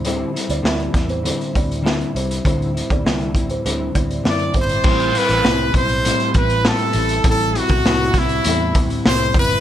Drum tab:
CC |----------------|----------------|x---------------|----------------|
HH |x-xx-xxxxxxx-xxx|xxxx-xxxx-xx-xxx|-xxx--xxxxxx-xxx|xxxx--xxx-xx--ox|
SD |----o-o-----o---|----o-------o---|----o-------o---|----o-o-----o---|
BD |------o---o-----|o--o--o---o---o-|o-----o---o-----|o--o--o---o---o-|